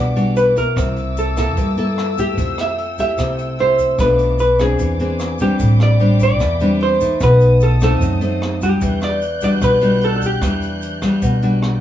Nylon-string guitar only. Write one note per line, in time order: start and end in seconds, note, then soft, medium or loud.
0.00 0.75 B2 soft
0.00 0.13 G3 medium
0.00 0.13 D4 medium
0.00 0.13 F#4 medium
0.16 0.53 G3 soft
0.16 0.53 D4 medium
0.16 0.53 F#4 medium
0.56 1.34 A#3 medium
0.56 1.34 E4 medium
0.76 1.55 C3 medium
1.37 1.74 A#3 medium
1.37 1.74 E4 medium
1.37 1.75 A4 medium
1.57 2.36 G2 medium
1.77 2.14 A#3 medium
1.77 2.15 E4 medium
1.77 2.15 A4 medium
2.18 2.75 A3 medium
2.18 2.75 E4 medium
2.18 2.76 G4 medium
2.38 3.17 F3 soft
2.99 3.56 A3 medium
2.99 3.56 E4 medium
2.99 3.56 G4 medium
3.18 3.97 C3 medium
3.60 3.96 A3 medium
3.60 3.97 E4 medium
3.60 3.97 G4 medium
4.00 4.78 B2 soft
4.00 4.39 F3 soft
4.00 4.40 A3 medium
4.00 4.40 D4 medium
4.60 4.97 C4 medium
4.60 4.97 D4 medium
4.60 4.97 G#4 medium
4.80 5.40 E3 medium
5.00 5.37 C4 medium
5.00 5.37 D4 medium
5.00 5.37 G#4 medium
5.40 5.99 G3 medium
5.40 5.99 C4 medium
5.40 6.00 D4 medium
5.60 6.38 A2 soft
6.00 6.40 G3 medium
6.00 6.40 C4 soft
6.00 6.40 D4 medium
6.41 7.19 E3 medium
6.61 6.97 G3 medium
6.61 6.98 C4 medium
6.61 6.98 D4 medium
7.00 7.78 A3 medium
7.00 7.78 D#4 medium
7.21 7.99 B2 soft
7.82 8.18 A3 medium
7.82 8.18 C4 medium
7.82 8.19 D#4 medium
8.01 8.79 F#3 medium
8.21 8.58 A3 medium
8.21 8.58 C4 medium
8.21 8.59 D#4 medium
8.62 9.19 G3 medium
8.62 9.19 D4 medium
8.82 9.60 E3 medium
9.42 9.79 G3 medium
9.42 9.79 D4 medium
9.42 9.79 F#4 medium
9.61 10.40 B2 medium
9.81 10.39 G3 medium
9.81 10.39 D4 medium
9.81 10.39 F#4 medium
10.42 11.20 E3 soft
10.42 10.99 G3 medium
10.42 10.99 D4 medium
11.02 11.39 G3 medium
11.02 11.39 D4 medium
11.22 11.80 B2 medium
11.43 11.80 G3 medium
11.43 11.80 D4 medium
11.43 11.80 F#4 medium